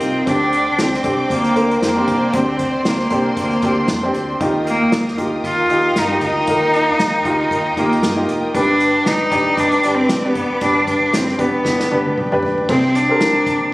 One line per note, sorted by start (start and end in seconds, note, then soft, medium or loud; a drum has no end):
0.00 0.22 C2 medium
0.00 0.28 D#3 medium
0.00 0.31 C4 medium
0.00 0.28 D#4 medium
0.00 0.29 F4 medium
0.00 0.28 G4 medium
0.00 0.22 A#4 medium
0.00 0.28 A#4 medium
0.00 0.23 F5 medium
0.00 4.36 G5 medium
0.00 0.22 D#6 medium
0.00 closed hi-hat medium
0.26 0.69 D2 medium
0.26 1.00 D3 medium
0.26 0.87 C4 medium
0.26 0.87 D4 medium
0.26 0.83 D4 medium
0.26 0.88 G4 medium
0.26 4.37 C5 medium
0.26 4.37 D5 medium
0.26 2.32 D6 medium
0.26 kick loud
0.26 closed hi-hat medium
0.53 closed hi-hat medium
0.78 1.00 D2 medium
0.78 1.31 C4 medium
0.78 snare medium
0.78 closed hi-hat medium
0.93 snare soft
1.04 1.25 C2 medium
1.04 1.46 C4 medium
1.04 1.46 D4 medium
1.04 1.47 G4 medium
1.04 kick medium
1.04 closed hi-hat medium
1.30 1.51 D2 medium
1.30 1.79 A#3 medium
1.30 kick medium
1.30 closed hi-hat medium
1.44 closed hi-hat soft
1.56 1.77 D2 medium
1.56 1.87 C4 medium
1.56 1.87 D4 medium
1.56 1.87 A#4 medium
1.56 closed hi-hat medium
1.71 closed hi-hat soft
1.82 2.03 F2 medium
1.82 2.37 A#3 medium
1.82 snare medium
1.82 closed hi-hat medium
1.96 2.25 C4 medium
1.96 2.25 D4 medium
1.96 2.25 G4 medium
2.07 2.29 C2 medium
2.07 kick medium
2.07 closed hi-hat medium
2.33 2.76 D2 loud
2.33 3.07 D3 medium
2.33 2.94 C4 medium
2.33 2.90 C4 medium
2.33 2.94 D4 medium
2.33 2.94 G4 medium
2.33 4.39 C6 medium
2.33 kick loud
2.33 closed hi-hat medium
2.59 kick medium
2.59 closed hi-hat medium
2.85 3.07 D2 medium
2.85 3.38 A#3 medium
2.85 snare medium
2.85 closed hi-hat medium
3.00 snare soft
3.10 3.32 C2 medium
3.10 3.52 C4 medium
3.10 3.53 D4 medium
3.10 3.53 G4 medium
3.10 kick medium
3.10 closed hi-hat medium
3.37 3.58 D2 loud
3.37 3.87 A#3 medium
3.37 kick medium
3.37 closed hi-hat medium
3.51 closed hi-hat soft
3.62 3.84 D2 medium
3.62 3.94 C4 medium
3.62 3.94 D4 medium
3.62 3.94 G4 medium
3.62 kick medium
3.62 closed hi-hat medium
3.88 4.10 F2 medium
3.88 snare medium
3.88 closed hi-hat medium
4.03 4.32 C4 medium
4.03 4.32 D4 medium
4.03 4.33 G4 medium
4.14 4.36 D2 medium
4.14 closed hi-hat medium
4.41 4.83 D#2 loud
4.41 5.14 D#3 medium
4.41 5.01 D#4 medium
4.41 5.01 F4 medium
4.41 5.02 G4 medium
4.41 8.51 A#4 medium
4.41 8.51 F5 medium
4.41 12.65 G5 medium
4.41 8.51 D#6 medium
4.41 kick loud
4.41 closed hi-hat medium
4.67 5.15 A#3 medium
4.67 closed hi-hat medium
4.92 5.14 D#2 loud
4.92 snare loud
4.92 closed hi-hat medium
5.08 snare soft
5.17 5.39 D2 medium
5.17 5.59 D#4 medium
5.17 5.60 F4 medium
5.17 5.60 G4 medium
5.17 kick medium
5.17 closed hi-hat medium
5.44 5.65 D#2 loud
5.44 6.00 F4 medium
5.44 kick medium
5.44 closed hi-hat medium
5.70 5.92 D#2 medium
5.70 6.01 D#4 medium
5.70 6.01 F4 medium
5.70 6.02 G4 medium
5.70 closed hi-hat medium
5.96 6.17 G2 medium
5.96 6.23 D#4 medium
5.96 snare medium
5.96 closed hi-hat medium
6.09 6.38 D#4 medium
6.09 6.39 F4 medium
6.09 6.39 G4 medium
6.21 6.43 D2 medium
6.21 7.74 D#4 loud
6.21 kick medium
6.21 closed hi-hat medium
6.47 6.90 D#2 loud
6.47 7.22 D#3 medium
6.47 7.08 D#4 medium
6.47 7.08 F4 medium
6.47 7.09 A#4 medium
6.47 kick loud
6.47 closed hi-hat medium
6.74 closed hi-hat medium
6.99 7.21 D#2 medium
6.99 snare loud
6.99 closed hi-hat medium
7.24 7.46 D2 medium
7.24 7.66 D#4 medium
7.24 7.67 F4 medium
7.24 7.67 G4 medium
7.24 kick medium
7.24 closed hi-hat medium
7.51 7.72 D#2 loud
7.51 kick medium
7.51 closed hi-hat medium
7.76 7.98 D#2 medium
7.76 8.26 A#3 medium
7.76 8.07 D#4 medium
7.76 8.08 F4 medium
7.76 8.08 G4 medium
7.76 kick medium
7.76 closed hi-hat medium
7.92 closed hi-hat soft
8.03 8.24 G2 medium
8.03 snare medium
8.03 closed hi-hat medium
8.16 8.45 D#4 medium
8.16 8.46 F4 medium
8.16 8.46 G4 medium
8.28 8.49 F1 medium
8.28 closed hi-hat medium
8.54 8.97 G1 loud
8.54 9.28 G2 medium
8.54 9.15 D4 medium
8.54 9.09 D4 loud
8.54 9.15 G4 medium
8.54 12.65 B4 medium
8.54 9.15 B4 medium
8.54 12.65 D5 medium
8.54 12.65 D6 medium
8.54 kick loud
8.54 closed hi-hat medium
8.80 closed hi-hat medium
9.05 9.27 G1 loud
9.05 9.61 D#4 loud
9.05 snare loud
9.05 closed hi-hat medium
9.31 9.53 F1 medium
9.31 9.73 D4 medium
9.31 9.74 G4 medium
9.31 9.74 D5 medium
9.31 kick medium
9.31 closed hi-hat medium
9.57 9.79 G1 loud
9.57 9.96 D4 medium
9.57 kick medium
9.57 closed hi-hat medium
9.72 closed hi-hat soft
9.83 10.05 G1 medium
9.83 10.14 D4 medium
9.83 10.15 G4 medium
9.83 10.15 D5 medium
9.83 closed hi-hat medium
9.95 10.31 C4 medium
10.09 10.31 B1 medium
10.09 snare medium
10.09 closed hi-hat medium
10.24 10.53 D4 medium
10.24 10.53 G4 medium
10.24 10.54 B4 medium
10.29 10.63 B3 medium
10.35 10.57 F1 medium
10.35 kick medium
10.35 closed hi-hat medium
10.61 11.04 G1 loud
10.61 11.36 G2 medium
10.61 11.22 D4 medium
10.61 10.86 D4 loud
10.61 11.22 G4 medium
10.61 11.23 B4 medium
10.61 kick loud
10.61 closed hi-hat medium
10.87 11.17 D4 medium
10.87 kick medium
10.87 closed hi-hat medium
11.13 11.34 G1 loud
11.13 11.43 C4 medium
11.13 snare loud
11.13 closed hi-hat medium
11.28 snare soft
11.38 11.60 F1 medium
11.38 12.18 B3 medium
11.38 11.80 D4 medium
11.38 11.81 G4 medium
11.38 11.81 B4 medium
11.38 kick medium
11.38 closed hi-hat medium
11.65 11.86 G1 loud
11.65 kick medium
11.65 snare medium
11.80 snare soft
11.91 12.12 G1 loud
11.91 12.22 D4 medium
11.91 12.22 G4 medium
11.91 12.23 B4 medium
11.91 high tom medium
12.06 high tom medium
12.17 12.38 B1 medium
12.17 mid tom medium
12.32 12.60 D4 medium
12.32 12.61 G4 medium
12.32 12.61 B4 medium
12.32 mid tom medium
12.43 12.64 B1 medium
12.43 floor tom medium
12.58 floor tom medium
12.69 13.11 C2 loud
12.69 13.43 C3 medium
12.69 13.00 C4 medium
12.69 12.98 C4 medium
12.69 13.00 G4 medium
12.69 13.00 G#4 medium
12.69 kick loud
12.69 crash medium
12.95 13.74 D4 medium
12.95 closed hi-hat medium
13.09 13.74 C4 medium
13.09 13.74 G4 medium
13.09 13.74 A#4 medium
13.20 13.42 C2 loud
13.20 snare loud
13.20 closed hi-hat medium
13.46 13.67 A#1 loud
13.46 kick medium
13.46 closed hi-hat medium